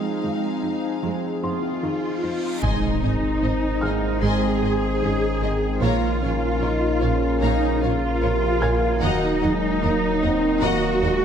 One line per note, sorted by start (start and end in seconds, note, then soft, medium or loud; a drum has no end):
0.00 2.63 F3 medium
0.00 2.63 C4 medium
0.00 1.42 D#4 soft
0.00 2.63 D#4 medium
0.00 2.62 G#4 medium
0.00 1.78 F5 medium
0.00 1.80 D#6 soft
0.00 reverse cymbal soft
0.23 0.32 F2 soft
0.23 0.31 D#3 soft
0.23 0.47 G#3 soft
0.63 0.71 F2 soft
0.63 0.71 F3 soft
0.63 0.87 D#4 soft
1.03 1.11 F2 soft
1.03 1.27 F3 medium
1.03 1.40 G#3 soft
1.42 1.50 F2 soft
1.42 1.51 F3 soft
1.42 1.67 D#4 soft
1.42 2.59 F4 medium
1.42 2.59 F4 soft
1.42 2.59 C6 soft
1.83 1.91 F2 soft
1.83 1.91 D#3 soft
1.83 2.07 D#4 soft
2.23 2.31 F2 soft
2.23 2.32 F3 soft
2.23 2.47 D#4 soft
2.63 5.84 G#1 medium
2.63 2.72 G#1 medium
2.63 6.59 D#3 soft
2.63 2.87 G#3 medium
2.63 5.79 G#3 medium
2.63 4.20 D#4 medium
2.63 5.79 D#4 soft
2.63 5.79 D#4 medium
2.63 5.79 G#4 medium
2.63 5.79 C5 medium
2.63 3.00 D#5 medium
2.63 3.00 G#5 medium
2.63 3.00 C6 medium
2.63 impact medium
3.03 3.12 G#1 soft
3.03 3.27 C4 medium
3.03 3.12 D#5 soft
3.03 3.11 G#5 soft
3.43 3.52 G#1 soft
3.43 3.67 C4 medium
3.43 3.52 C5 soft
3.43 3.52 D#5 soft
3.81 3.91 G#1 soft
3.81 4.07 G#4 medium
3.81 3.93 D#5 soft
3.81 3.92 G#5 soft
3.81 6.18 F6 soft
4.22 4.31 G#1 medium
4.22 4.47 G#3 medium
4.22 4.99 C4 medium
4.22 5.82 G#4 medium
4.22 4.61 D#5 medium
4.22 4.61 G#5 medium
4.22 4.60 C6 medium
4.63 4.71 G#1 soft
4.63 4.87 G#4 medium
4.63 4.72 D#5 soft
4.63 4.72 G#5 soft
5.02 5.11 G#1 soft
5.02 5.42 C#4 soft
5.02 5.27 G#4 soft
5.02 5.12 C5 soft
5.02 5.12 D#5 soft
5.42 5.50 G#1 soft
5.42 5.83 C4 soft
5.42 5.67 G#4 medium
5.42 5.51 D#5 soft
5.42 5.52 G#5 soft
5.82 5.90 A#1 medium
5.82 9.03 A#1 medium
5.82 9.02 F3 medium
5.82 6.06 A#3 medium
5.82 11.25 A#3 medium
5.82 11.25 A#3 soft
5.82 6.23 A#3 medium
5.82 7.39 F4 medium
5.82 11.25 A#4 medium
5.82 6.20 C#5 medium
5.82 9.03 F5 medium
5.82 6.20 F5 medium
5.82 6.20 A#5 medium
6.22 6.30 A#1 soft
6.22 6.62 C#4 medium
6.22 6.47 C#4 medium
6.22 6.32 C#5 soft
6.22 6.31 F5 soft
6.61 6.70 A#1 soft
6.61 9.02 C#3 medium
6.61 6.87 C#4 medium
6.61 7.02 D#4 medium
6.61 6.70 A#4 soft
6.61 6.69 C#5 soft
6.61 6.70 C#5 soft
7.01 7.11 A#1 soft
7.01 8.20 C#4 medium
7.01 7.27 A#4 medium
7.01 7.09 C#5 soft
7.01 7.10 F5 soft
7.41 7.50 A#1 medium
7.41 7.67 A#3 medium
7.41 7.82 D#4 medium
7.41 7.81 D#4 medium
7.41 7.79 C#5 soft
7.41 7.79 F5 medium
7.41 7.79 A#5 medium
7.82 7.91 A#1 soft
7.82 9.00 F4 medium
7.82 9.03 F4 medium
7.82 8.07 A#4 medium
7.82 7.91 C#5 soft
7.82 7.90 F5 soft
8.22 8.31 A#1 soft
8.22 8.62 C3 medium
8.22 8.30 A#4 soft
8.22 8.47 A#4 medium
8.22 8.30 C#5 soft
8.61 8.71 A#1 soft
8.61 9.03 A#3 medium
8.61 8.87 A#4 medium
8.61 8.70 C#5 medium
8.61 8.70 F5 soft
8.61 10.98 G#5 soft
8.61 10.98 G#6 soft
9.01 11.25 D#1 medium
9.01 9.11 D#2 medium
9.01 9.26 D#3 medium
9.01 11.25 F#3 medium
9.01 9.42 F#3 medium
9.01 10.59 D#4 medium
9.01 9.40 D#5 medium
9.01 11.25 D#5 medium
9.01 9.40 F#5 medium
9.01 9.40 A#5 medium
9.42 9.52 D#2 soft
9.42 9.66 F#3 medium
9.42 9.83 G#3 medium
9.42 9.50 D#5 soft
9.42 9.50 F#5 soft
9.82 9.91 D#2 soft
9.82 10.06 F#3 medium
9.82 10.23 A#3 medium
9.82 9.91 A#4 soft
9.82 9.90 D#5 medium
9.82 9.91 D#5 soft
10.23 10.31 D#2 soft
10.23 10.63 C4 medium
10.23 10.47 D#4 medium
10.23 10.32 D#5 soft
10.23 10.31 F#5 soft
10.62 10.71 D#2 medium
10.62 10.87 D#3 medium
10.62 11.03 A#3 medium
10.62 11.25 F#4 medium
10.62 10.99 D#5 medium
10.62 11.00 F#5 medium
10.62 11.00 A#5 medium
11.02 11.10 D#2 medium
11.02 11.25 G#3 medium
11.02 11.25 D#4 medium
11.02 11.11 D#5 medium
11.02 11.11 F#5 medium